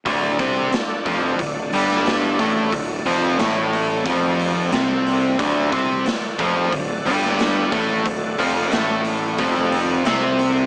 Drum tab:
HH |o-o-o-o-o-o-o-o-|o-o-o-o-o-o-o-o-|o-o-o-o-o-o-o-o-|o-o-o-o-o-o-o-o-|
SD |----o------oo---|----o-------o---|----o------oo---|----o-------o---|
BD |o-o---o-o-----o-|o-------o-------|o-o---o-o-----o-|o-------o-------|